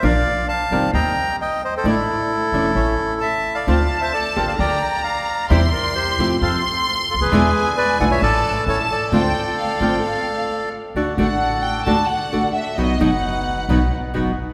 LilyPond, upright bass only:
\new Staff \with { instrumentName = "Upright bass" } { \clef bass \time 4/4 \key d \minor \tempo 4 = 132 bes,,16. r4 r32 f,,16. r32 ees,16. r4. r32 | a,,16. r4 r32 e,,16. r32 a,,16. r4. r32 | d,16. r4 r32 a,,16. r32 d,16. r4. r32 | e,16. r4 r32 e,16. r32 f,16. r4 r16 cis,32 d,32 ees,32 |
e,16. r4 r32 b,,16. r32 a,,16. r8 r32 a,,16. r8 r32 | d,16. r4 r32 a,,16. r2 r32 | \key d \major d,16. r32 a,,4~ a,,16. r32 d,16. r8 r32 a,,16. r8 r32 | b,,16. r32 fis,,4~ fis,,16. r32 b,,16. r8 r32 fis,,16. r8 r32 | }